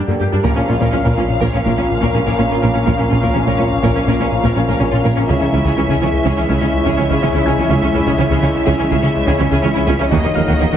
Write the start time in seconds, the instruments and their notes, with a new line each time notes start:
Already playing: synth drone G3 D4 G4 A#4, grand piano A#5 A#6
0.08 analog synth bass G2, cello section G2, viola section D3 A#3, synth arpeggio sound G3
0.20 analog synth bass G2, cello section G2, viola section A#3 G4, synth arpeggio sound G4
0.32 analog synth bass G2, cello section G2, viola section G3 D4, synth arpeggio sound G4
0.43 detuned saw bass A#1, double bass section A#1, tuba A#1, analog synth bass A#2, cello section A#2, synth arpeggio sound A#3, synth drone A#3 C#4 F4 A#4, french horn section C#4 F4, viola section C#4, violin section A#4 F5, taiko
0.56 analog synth bass A#2, cello section A#2, viola section C#4, violin section C#4, synth arpeggio sound A#4
0.68 double bass section A#1, tuba A#1, cello section A#2, analog synth bass A#2, viola section C#4, synth arpeggio sound C#4, violin section F4
0.80 cello section A#2, analog synth bass A#2, synth arpeggio sound A#3, viola section C#4, violin section A#4, taiko
0.92 double bass section A#1, tuba A#1, cello section A#2, analog synth bass A#2, violin section C#4, viola section C#4, synth arpeggio sound C#4, grand piano F6
1.05 cello section A#2, analog synth bass A#2, synth arpeggio sound A#3, viola section C#4, violin section A#4, taiko
1.17 double bass section A#1, tuba A#1, cello section A#2, analog synth bass A#3, violin section C#4, viola section C#4, synth arpeggio sound F4
1.29 analog synth bass A#2
1.41 tuba A#1, double bass section A#1, cello section A#2, analog synth bass A#2, synth arpeggio sound A#3, viola section C#4, violin section A#4, taiko
1.53 cello section A#2, analog synth bass A#2, synth arpeggio sound C#4, viola section C#4, violin section C#4
1.65 double bass section A#1, tuba A#1, cello section A#2, analog synth bass A#2, synth arpeggio sound A#3, viola section C#4, violin section A#4, taiko
1.77 cello section A#2, analog synth bass A#3, viola section C#4, violin section C#4, synth arpeggio sound F4
1.90 analog synth bass A#2
2.01 cello section A#2, analog synth bass A#2, synth arpeggio sound A#3, viola section C#4, violin section A#4, taiko
2.13 double bass section A#1, tuba A#1, analog synth bass A#2, cello section A#2, viola section C#4, violin section C#4, synth arpeggio sound A#4
2.26 cello section A#2, analog synth bass A#2, synth arpeggio sound A#3, viola section C#4, violin section A#4, taiko
2.38 tuba A#1, double bass section A#1, cello section A#2, analog synth bass A#2, viola section C#4, synth arpeggio sound C#4, violin section C#4
2.50 cello section A#2, analog synth bass A#2, viola section C#4, violin section F4, synth arpeggio sound A#4
2.62 tuba A#1, double bass section A#1, cello section A#2, analog synth bass A#2, synth arpeggio sound A#3, viola section C#4, violin section A#4
2.74 cello section A#2, analog synth bass A#2, viola section C#4, violin section C#4, synth arpeggio sound C#4
2.86 double bass section A#1, tuba A#1, cello section A#2, analog synth bass A#2, synth arpeggio sound A#3, viola section C#4, violin section A#4, taiko
2.98 analog synth bass A#2, cello section A#2, viola section C#4, violin section C#4, synth arpeggio sound A#4
3.10 double bass section A#1, tuba A#1, cello section A#2, analog synth bass A#2, viola section C#4, synth arpeggio sound C#4, violin section F4
3.22 analog synth bass A#2, cello section A#2, synth arpeggio sound A#3, viola section C#4, violin section A#4, taiko
3.34 tuba A#1, double bass section A#1, analog synth bass A#2, cello section A#2, viola section C#4, synth arpeggio sound C#4, violin section C#4
3.46 cello section A#2, analog synth bass A#2, synth arpeggio sound A#3, viola section C#4, violin section A#4, taiko
3.58 tuba A#1, double bass section A#1, cello section A#2, analog synth bass A#3, viola section C#4, violin section C#4, synth arpeggio sound F4
3.72 analog synth bass A#2
3.83 double bass section A#1, tuba A#1, analog synth bass A#2, cello section A#2, synth arpeggio sound A#3, viola section C#4, violin section A#4, taiko
3.95 analog synth bass A#2, cello section A#2, viola section C#4, synth arpeggio sound C#4, violin section C#4
4.07 tuba A#1, double bass section A#1, analog synth bass A#2, cello section A#2, synth arpeggio sound A#3, viola section C#4, violin section A#4, taiko
4.20 cello section A#2, analog synth bass A#3, viola section C#4, violin section C#4, synth arpeggio sound F4
4.32 analog synth bass A#2
4.43 analog synth bass A#2, cello section A#2, synth arpeggio sound A#3, viola section C#4, violin section A#4, taiko
4.56 double bass section A#1, tuba A#1, cello section A#2, analog synth bass A#2, viola section C#4, violin section C#4, synth arpeggio sound A#4
4.67 analog synth bass A#2, cello section A#2, synth arpeggio sound A#3, viola section C#4, violin section A#4, taiko
4.79 tuba A#1, double bass section A#1, analog synth bass A#2, cello section A#2, viola section C#4, synth arpeggio sound C#4, violin section C#4
4.91 analog synth bass A#2, cello section A#2, viola section C#4, violin section F4, synth arpeggio sound A#4
5.03 tuba A#1, double bass section A#1, cello section A#2, analog synth bass A#2, synth arpeggio sound A#3, viola section C#4, violin section A#4
5.16 cello section A#2, analog synth bass A#2, viola section C#4, violin section C#4, synth arpeggio sound C#4
5.28 tuba C#2, detuned saw bass C#2, analog synth bass C#2, double bass section C#2, cello section C#3, synth arpeggio sound C#3, french horn section G#3 E4, synth drone G#3 C#4 E4 C#5, viola section C#4, violin section G#4 E5, taiko
5.41 analog synth bass C#2, cello section C#3, violin section C#4, viola section C#4, synth arpeggio sound C#4
5.52 tuba C#2, analog synth bass C#2, double bass section C#2, cello section C#3, synth arpeggio sound E3, viola section C#4, violin section E4
5.64 analog synth bass C#2, cello section C#3, synth arpeggio sound C#3, viola section C#4, violin section G#4, taiko
5.76 tuba C#2, analog synth bass C#2, double bass section C#2, cello section C#3, synth arpeggio sound E3, viola section C#4, violin section C#4
5.88 analog synth bass C#2, synth arpeggio sound C#3, cello section C#3, viola section C#4, violin section G#4, taiko
6.00 tuba C#2, double bass section C#2, analog synth bass C#3, cello section C#3, synth arpeggio sound G#3, viola section C#4, violin section C#4
6.13 analog synth bass C#2
6.24 tuba C#2, analog synth bass C#2, double bass section C#2, synth arpeggio sound C#3, cello section C#3, viola section C#4, violin section G#4, taiko
6.37 analog synth bass C#2, cello section C#3, synth arpeggio sound E3, viola section C#4, violin section C#4
6.49 analog synth bass C#2, tuba C#2, double bass section C#2, synth arpeggio sound C#3, cello section C#3, viola section C#4, violin section G#4, taiko
6.61 analog synth bass C#3, cello section C#3, synth arpeggio sound G#3, viola section C#4, violin section C#4
6.73 analog synth bass C#2
6.85 analog synth bass C#2, synth arpeggio sound C#3, cello section C#3, viola section C#4, violin section G#4, taiko
6.97 tuba C#2, analog synth bass C#2, double bass section C#2, cello section C#3, viola section C#4, synth arpeggio sound C#4, violin section C#4
7.09 analog synth bass C#2, synth arpeggio sound C#3, cello section C#3, viola section C#4, violin section G#4, taiko
7.21 tuba C#2, double bass section C#2, analog synth bass C#2, cello section C#3, synth arpeggio sound E3, viola section C#4, violin section C#4
7.34 analog synth bass C#2, cello section C#3, viola section C#4, synth arpeggio sound C#4, violin section E4
7.45 tuba C#2, double bass section C#2, analog synth bass C#2, synth arpeggio sound C#3, cello section C#3, viola section C#4, violin section G#4, grand piano G#5 G#6
7.58 analog synth bass C#2, cello section C#3, synth arpeggio sound E3, viola section C#4, violin section C#4
7.69 tuba C#2, analog synth bass C#2, double bass section C#2, synth arpeggio sound C#3, cello section C#3, viola section C#4, violin section G#4, taiko
7.82 analog synth bass C#2, cello section C#3, viola section C#4, synth arpeggio sound C#4, violin section C#4
7.93 tuba C#2, analog synth bass C#2, double bass section C#2, cello section C#3, synth arpeggio sound E3, viola section C#4, violin section E4
8.06 analog synth bass C#2, cello section C#3, synth arpeggio sound C#3, viola section C#4, violin section G#4, taiko
8.18 tuba C#2, analog synth bass C#2, double bass section C#2, cello section C#3, synth arpeggio sound E3, viola section C#4, violin section C#4
8.30 analog synth bass C#2, cello section C#3, synth arpeggio sound C#3, viola section C#4, violin section G#4, taiko
8.42 tuba C#2, double bass section C#2, cello section C#3, analog synth bass C#3, synth arpeggio sound G#3, violin section C#4, viola section C#4
8.55 analog synth bass C#2
8.66 tuba C#2, analog synth bass C#2, double bass section C#2, cello section C#3, synth arpeggio sound C#3, viola section C#4, violin section G#4, taiko
8.79 analog synth bass C#2, cello section C#3, synth arpeggio sound E3, viola section C#4, violin section C#4
8.90 tuba C#2, double bass section C#2, analog synth bass C#2, cello section C#3, synth arpeggio sound C#3, viola section C#4, violin section G#4, taiko
9.03 analog synth bass C#3, cello section C#3, synth arpeggio sound G#3, violin section C#4, viola section C#4
9.16 analog synth bass C#2
9.26 analog synth bass C#2, cello section C#3, synth arpeggio sound C#3, viola section C#4, violin section G#4, taiko
9.39 analog synth bass C#2, double bass section C#2, tuba C#2, cello section C#3, synth arpeggio sound C#4, violin section C#4, viola section C#4
9.51 analog synth bass C#2, cello section C#3, synth arpeggio sound C#3, viola section C#4, violin section G#4, taiko
9.62 analog synth bass C#2, tuba C#2, double bass section C#2, cello section C#3, synth arpeggio sound E3, violin section C#4, viola section C#4
9.75 analog synth bass C#2, cello section C#3, synth arpeggio sound C#4, viola section C#4, violin section E4
9.86 analog synth bass C#2, double bass section C#2, tuba C#2, synth arpeggio sound C#3, cello section C#3, viola section C#4, violin section G#4
9.99 analog synth bass C#2, cello section C#3, synth arpeggio sound E3, violin section C#4, viola section C#4
10.11 detuned saw bass D#1, analog synth bass D#2, tuba D#2, double bass section D#2, synth arpeggio sound D#3, cello section D#3, synth drone F#3 A#3 D#4 D#5, french horn section F#3 D#4, viola section A#3, violin section F#4 D#5, taiko
10.23 analog synth bass D#2, cello section D#3, violin section A#3, viola section A#3, synth arpeggio sound D#4
10.35 analog synth bass D#2, tuba D#2, double bass section D#2, cello section D#3, synth arpeggio sound F#3, viola section A#3, violin section D#4, grand piano F5 F6
10.47 analog synth bass D#2, synth arpeggio sound D#3, cello section D#3, viola section A#3, violin section F#4, taiko
10.60 analog synth bass D#2, tuba D#2, double bass section D#2, cello section D#3, synth arpeggio sound F#3, violin section A#3, viola section A#3
10.72 analog synth bass D#2, cello section D#3, synth arpeggio sound D#3, viola section A#3, violin section F#4, taiko